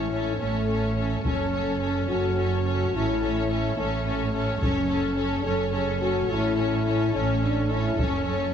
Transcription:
0.00 0.31 A1 soft
0.00 0.31 A2 soft
0.00 0.12 C#4 soft
0.00 0.41 E4 medium
0.00 0.12 A4 soft
0.00 0.12 C#5 soft
0.13 0.40 C#4 soft
0.13 0.41 A4 soft
0.13 0.38 C#5 soft
0.40 1.15 A1 soft
0.40 1.15 A2 soft
0.40 1.25 A3 soft
0.40 0.68 C#4 soft
0.40 0.69 A4 soft
0.40 0.67 C#5 soft
0.68 0.96 C#4 soft
0.68 0.97 A4 soft
0.68 0.96 C#5 soft
0.97 1.23 C#4 soft
0.97 1.26 A4 soft
0.97 1.23 C#5 soft
1.24 1.99 F#1 soft
1.24 1.99 F#2 soft
1.24 1.51 C#4 soft
1.24 2.08 C#4 medium
1.24 1.53 A4 soft
1.24 1.50 C#5 soft
1.24 taiko soft
1.52 1.78 C#4 soft
1.52 1.81 A4 soft
1.52 1.79 C#5 soft
1.80 2.07 C#4 soft
1.80 2.08 A4 soft
1.80 2.07 C#5 soft
2.08 2.84 F#1 soft
2.08 2.84 F#2 soft
2.08 2.36 C#4 soft
2.08 2.93 F#4 medium
2.08 2.35 A4 soft
2.08 2.36 C#5 soft
2.37 2.64 C#4 soft
2.37 2.63 A4 soft
2.37 2.64 C#5 soft
2.64 2.93 C#4 soft
2.64 2.92 A4 soft
2.64 2.92 C#5 soft
2.93 3.68 A1 soft
2.93 3.67 A2 soft
2.93 3.21 C#4 soft
2.93 3.78 E4 medium
2.93 3.21 A4 soft
2.93 3.21 C#5 soft
3.22 3.49 C#4 soft
3.22 3.48 A4 soft
3.22 3.49 C#5 soft
3.49 3.77 C#4 soft
3.49 3.76 A4 soft
3.49 3.76 C#5 soft
3.77 4.52 A1 soft
3.77 4.52 A2 soft
3.77 4.46 A3 medium
3.77 4.05 C#4 soft
3.77 4.04 A4 soft
3.77 4.05 C#5 soft
4.06 4.33 C#4 soft
4.06 4.33 A4 soft
4.06 4.32 C#5 soft
4.33 4.62 C#4 soft
4.33 4.60 A4 soft
4.33 4.59 C#5 soft
4.60 5.36 F#1 soft
4.60 5.36 F#2 soft
4.60 4.89 C#4 soft
4.60 5.45 C#4 medium
4.60 4.87 A4 soft
4.60 4.86 C#5 soft
4.60 taiko soft
4.87 5.17 C#4 soft
4.87 5.17 A4 soft
4.87 5.15 C#5 soft
5.16 5.45 C#4 soft
5.16 5.44 A4 soft
5.16 5.42 C#5 soft
5.43 6.20 F#1 soft
5.43 6.20 F#2 soft
5.43 5.74 C#4 soft
5.43 5.72 A4 soft
5.43 5.74 A4 medium
5.43 5.71 C#5 soft
5.72 6.01 C#4 soft
5.72 6.01 G#4 medium
5.72 6.00 A4 soft
5.72 5.98 C#5 soft
5.99 6.30 C#4 soft
5.99 6.29 F#4 medium
5.99 6.27 A4 soft
5.99 6.27 C#5 soft
6.28 7.04 A1 medium
6.28 7.05 A2 soft
6.28 6.57 C#4 soft
6.28 7.15 E4 medium
6.28 6.56 A4 soft
6.28 6.55 C#5 soft
6.56 6.86 C#4 soft
6.56 6.84 A4 soft
6.56 6.84 C#5 soft
6.85 7.14 C#4 soft
6.85 7.11 A4 soft
6.85 7.12 C#5 soft
7.12 7.89 A1 medium
7.12 7.89 A2 soft
7.12 7.42 C#4 medium
7.12 7.42 C#4 soft
7.12 7.40 A4 soft
7.12 7.42 C#5 soft
7.41 7.71 C#4 soft
7.41 7.71 D4 medium
7.41 7.68 A4 soft
7.41 7.69 C#5 soft
7.69 7.99 C#4 soft
7.69 7.99 E4 medium
7.69 7.96 A4 soft
7.69 7.96 C#5 soft
7.97 8.54 F#1 soft
7.97 8.54 F#2 soft
7.97 8.54 C#4 medium
7.97 8.27 C#4 soft
7.97 8.25 A4 soft
7.97 8.25 C#5 soft
7.97 taiko soft
8.26 8.54 C#4 soft
8.26 8.52 A4 soft
8.26 8.52 C#5 soft

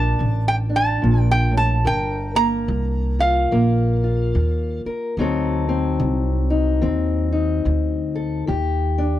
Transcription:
0.00 0.17 A#1 medium
0.00 0.13 C3 medium
0.00 0.22 A#3 medium
0.00 0.69 D4 medium
0.00 1.82 A#4 medium
0.00 0.48 A5 medium
0.19 1.01 A1 medium
0.19 0.96 C3 medium
0.48 0.56 G5 medium
0.69 3.19 D4 medium
0.76 1.20 A5 loud
1.02 1.84 A#1 medium
1.02 1.51 A#2 medium
1.20 1.31 G5 loud
1.31 1.57 G5 loud
1.51 1.84 A2 medium
1.57 1.84 A5 medium
1.84 2.66 G1 medium
1.84 2.61 G2 medium
1.84 4.83 A#4 medium
1.84 2.36 G5 loud
2.35 3.51 A#3 medium
2.35 3.21 A#5 loud
2.68 3.49 C2 medium
2.68 3.45 G2 medium
3.19 4.02 F4 medium
3.19 4.81 F5 medium
3.51 4.32 A#1 medium
3.51 4.28 G2 medium
3.51 5.17 A#3 medium
4.04 5.14 F4 medium
4.35 4.81 D#2 medium
4.35 5.11 G2 medium
4.85 5.14 A#4 medium
4.85 muted upright bass stroke soft
5.17 5.97 D2 medium
5.17 5.94 D3 medium
5.17 8.45 F#3 medium
5.17 5.68 C4 medium
5.17 6.50 D#4 medium
5.21 8.14 A4 medium
5.69 6.81 C4 medium
6.00 6.80 C2 medium
6.00 6.76 D3 medium
6.50 7.32 D#4 medium
6.82 7.63 D#2 medium
6.82 7.58 D3 medium
6.82 8.43 C4 medium
7.32 9.01 D#4 medium
7.65 8.45 D2 medium
7.65 8.41 D3 medium
8.15 8.44 A4 medium
8.47 9.20 D#2 medium
8.47 9.20 D#3 medium
8.47 9.20 G4 medium
8.98 9.20 D4 medium

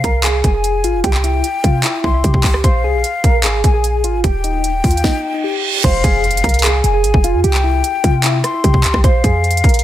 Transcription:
0.00 0.42 C2 loud
0.00 0.22 A#4 medium
0.00 0.40 F5 loud
0.00 kick loud
0.00 closed hi-hat medium
0.24 0.52 G#4 medium
0.24 clap loud
0.24 closed hi-hat loud
0.44 0.85 F1 loud
0.44 1.01 G#5 medium
0.44 kick medium
0.44 closed hi-hat medium
0.54 0.82 G#4 medium
0.64 closed hi-hat medium
0.84 0.95 G#1 loud
0.84 1.02 F4 medium
0.84 closed hi-hat medium
0.94 1.03 F1 loud
1.04 1.42 C2 loud
1.04 1.22 G4 loud
1.04 2.00 G5 loud
1.04 kick loud
1.04 closed hi-hat medium
1.14 clap medium
1.24 1.42 E4 medium
1.24 closed hi-hat medium
1.44 closed hi-hat medium
1.64 1.83 C3 loud
1.64 1.82 F4 medium
1.64 kick loud
1.64 closed hi-hat medium
1.84 2.12 E4 medium
1.84 clap loud
1.84 closed hi-hat medium
2.04 2.23 C2 loud
2.04 2.60 C6 medium
2.04 kick medium
2.14 2.23 E4 medium
2.24 2.46 C3 loud
2.24 2.61 G4 medium
2.24 kick medium
2.24 closed hi-hat medium
2.34 kick medium
2.44 2.63 C#2 loud
2.44 kick loud
2.44 clap loud
2.44 open hi-hat medium
2.54 cross-stick medium
2.64 2.85 A#1 loud
2.64 2.82 C5 loud
2.64 3.60 F5 loud
2.64 kick loud
2.64 closed hi-hat medium
2.84 2.96 C2 loud
2.84 3.02 G#4 medium
2.94 3.04 A#1 loud
3.04 closed hi-hat medium
3.24 3.45 A#1 loud
3.24 3.42 A#4 medium
3.24 kick loud
3.24 closed hi-hat medium
3.44 3.63 G#1 loud
3.44 3.72 G#4 medium
3.44 clap loud
3.44 closed hi-hat medium
3.64 4.05 A#1 loud
3.64 4.20 G#5 medium
3.64 kick medium
3.64 closed hi-hat medium
3.74 4.02 G#4 medium
3.84 closed hi-hat medium
4.04 4.23 G#1 medium
4.04 4.22 F4 medium
4.04 closed hi-hat medium
4.24 4.82 D#1 loud
4.24 4.42 G4 loud
4.24 5.61 G5 loud
4.24 kick loud
4.24 closed hi-hat medium
4.44 4.62 D#4 medium
4.44 closed hi-hat medium
4.64 closed hi-hat medium
4.84 5.03 D#2 loud
4.84 5.02 F4 medium
4.84 kick loud
4.84 closed hi-hat medium
4.84 open hi-hat medium
4.91 closed hi-hat medium
4.97 closed hi-hat medium
5.04 5.32 D#4 medium
5.04 kick loud
5.04 snare medium
5.04 reverse cymbal medium
5.34 5.43 D#4 medium
5.44 5.82 G4 medium
5.84 6.03 F1 loud
5.84 6.02 C5 loud
5.84 6.80 F5 loud
5.84 kick loud
5.84 closed hi-hat medium
5.84 crash loud
5.84 impact medium
6.04 6.42 F1 loud
6.04 6.22 G#4 medium
6.04 kick loud
6.04 closed hi-hat medium
6.24 closed hi-hat medium
6.31 closed hi-hat medium
6.37 closed hi-hat medium
6.44 6.82 C2 loud
6.44 6.62 A#4 medium
6.44 kick loud
6.44 closed hi-hat medium
6.49 closed hi-hat medium
6.54 closed hi-hat medium
6.59 closed hi-hat medium
6.64 6.92 G#4 medium
6.64 clap loud
6.64 closed hi-hat loud
6.84 7.05 F1 loud
6.84 7.41 G#5 medium
6.84 closed hi-hat medium
6.94 7.22 G#4 medium
7.04 7.13 G#1 loud
7.04 closed hi-hat medium
7.14 7.35 F1 loud
7.14 kick loud
7.24 7.42 F4 medium
7.24 closed hi-hat medium
7.34 7.43 F2 loud
7.44 7.82 C2 loud
7.44 7.62 G4 loud
7.44 8.40 G5 loud
7.44 closed hi-hat medium
7.54 clap medium
7.64 7.82 E4 medium
7.84 closed hi-hat medium
8.04 8.42 C3 loud
8.04 8.22 F4 medium
8.04 kick loud
8.04 closed hi-hat medium
8.24 8.52 E4 medium
8.24 clap loud
8.24 closed hi-hat loud
8.44 9.00 C6 medium
8.44 cross-stick medium
8.44 closed hi-hat medium
8.54 8.63 E4 medium
8.64 8.85 C3 loud
8.64 9.01 G4 medium
8.64 kick loud
8.64 closed hi-hat medium
8.74 kick medium
8.84 8.93 C#2 loud
8.84 clap loud
8.84 closed hi-hat medium
8.94 9.04 C2 loud
8.94 kick loud
8.94 cross-stick medium
9.04 9.23 A#1 loud
9.04 9.22 C5 loud
9.04 9.84 F5 loud
9.04 kick loud
9.04 closed hi-hat medium
9.24 9.62 F2 loud
9.24 9.42 G#4 medium
9.24 kick loud
9.24 closed hi-hat medium
9.44 closed hi-hat medium
9.51 closed hi-hat medium
9.57 closed hi-hat medium
9.64 9.84 A#1 loud
9.64 9.82 A#4 medium
9.64 kick loud
9.64 closed hi-hat medium
9.69 closed hi-hat medium
9.74 closed hi-hat medium
9.79 closed hi-hat medium

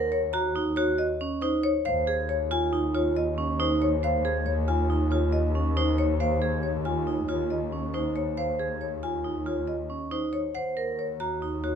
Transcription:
0.00 1.73 D#2 medium
0.00 0.18 A#4 loud
0.12 0.40 C#5 medium
0.33 0.62 F#4 medium
0.33 0.61 A#5 loud
0.55 0.83 D#4 medium
0.76 1.05 F#4 loud
0.76 1.05 C#5 medium
0.98 1.27 D#5 loud
1.21 1.49 C#4 medium
1.42 1.70 D#4 loud
1.42 1.70 C5 medium
1.63 1.92 C#5 loud
1.85 10.42 D#2 loud
1.85 2.14 C5 medium
1.85 2.14 F5 loud
2.07 2.35 G#4 loud
2.29 2.57 C#5 medium
2.51 2.79 F4 medium
2.51 2.79 G#5 loud
2.73 3.01 D#4 medium
2.94 3.22 F4 loud
2.94 3.22 C#5 medium
3.16 3.44 D#5 medium
3.38 3.66 C#4 medium
3.60 3.88 D#4 loud
3.60 3.88 C5 medium
3.82 4.10 C#5 loud
4.03 4.31 C5 medium
4.03 4.31 F5 loud
4.25 4.53 G#4 loud
4.46 4.74 C#5 medium
4.68 4.96 F4 medium
4.68 4.96 G#5 medium
4.90 5.18 D#4 medium
5.11 5.40 F4 medium
5.11 5.39 C#5 medium
5.32 5.61 D#5 medium
5.55 5.83 C#4 medium
5.77 6.05 D#4 medium
5.77 6.05 C5 medium
5.98 6.27 C#5 medium
6.20 6.48 C5 medium
6.20 6.49 F5 medium
6.42 6.70 G#4 medium
6.63 6.92 C#5 medium
6.85 7.14 F4 medium
6.85 7.14 G#5 medium
7.07 7.35 D#4 medium
7.28 7.57 F4 medium
7.28 7.57 C#5 medium
7.50 7.79 D#5 medium
7.73 8.01 C#4 medium
7.94 8.22 D#4 medium
7.94 8.22 C5 medium
8.16 8.44 C#5 medium
8.37 8.66 C5 medium
8.37 8.66 F5 medium
8.60 8.88 G#4 medium
8.81 9.09 C#5 medium
9.03 9.31 F4 medium
9.03 9.31 G#5 medium
9.24 9.53 D#4 medium
9.46 9.74 F4 medium
9.46 9.75 C#5 medium
9.68 9.96 D#5 medium
9.90 10.18 C#4 medium
10.11 10.40 D#4 medium
10.11 10.40 C5 medium
10.33 10.61 C#5 medium
10.55 11.75 D#2 medium
10.55 10.83 C5 medium
10.55 10.83 F#5 medium
10.77 11.05 A#4 medium
10.99 11.27 C#5 medium
11.20 11.48 F#4 medium
11.20 11.48 A#5 medium
11.42 11.70 D#4 medium
11.63 11.75 F#4 medium
11.63 11.75 C#5 medium

